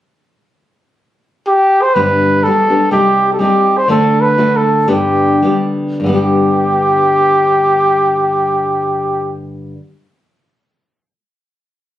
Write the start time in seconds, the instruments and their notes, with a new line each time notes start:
1.47 trumpet G4
1.82 trumpet C5
1.95 nylon-string guitar G2 D3 G3 B3 D4 G4, trumpet B4
2.44 nylon-string guitar G3 B3 D4 G4, trumpet A4
2.69 nylon-string guitar G3 B3 D4 G4
2.91 nylon-string guitar C3 G3 C4 D#4 G4, trumpet G4
3.33 trumpet A4
3.39 nylon-string guitar G3 C4 D#4 G4, trumpet G4
3.78 trumpet C5
3.88 nylon-string guitar D3 A3 D4 F#4 A4, trumpet A4
4.21 trumpet B4
4.38 nylon-string guitar A3 D4 F#4 A4
4.57 trumpet A4
4.88 nylon-string guitar G2 D3 G3 B3 D4 G4, trumpet G4
5.42 nylon-string guitar G3 B3 D4 G4
6.00 nylon-string guitar G2 D3
6.04 nylon-string guitar G3, trumpet G4
6.09 nylon-string guitar B3 D4
6.14 nylon-string guitar G4